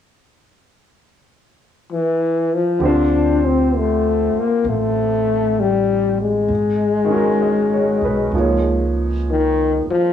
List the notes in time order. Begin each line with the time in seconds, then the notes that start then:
1.93 E3
2.54 F3
2.79 D2 D3 C4 G4
2.83 D4 F4 C5
3.47 C4
3.77 A3
4.33 muted upright bass stroke
4.39 A#3
4.64 A1
4.69 A3
5.60 G3
6.21 G#3
6.48 G#1
7.05 D#3 G#3
7.10 C#4 F#4
7.16 A#4
7.42 D#5
7.74 C#5
8.01 B1 B4
8.32 C#2 F3
8.36 A#3 D#4 G#4 C#5
9.31 D#3
9.85 muted upright bass stroke
9.91 F3